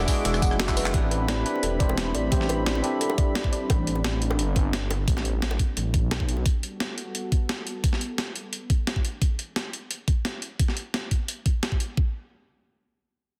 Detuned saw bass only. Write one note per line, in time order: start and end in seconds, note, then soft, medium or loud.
0.25 0.53 E1 medium
0.51 0.93 F#1 loud
0.94 1.44 A1 loud
1.63 2.13 E1 medium
2.15 2.30 A1 medium
2.32 2.82 A1 loud
3.70 4.40 A1 medium
4.39 5.06 G1 medium
5.08 5.58 A1 medium
5.77 6.04 A1 medium
6.03 6.44 B1 loud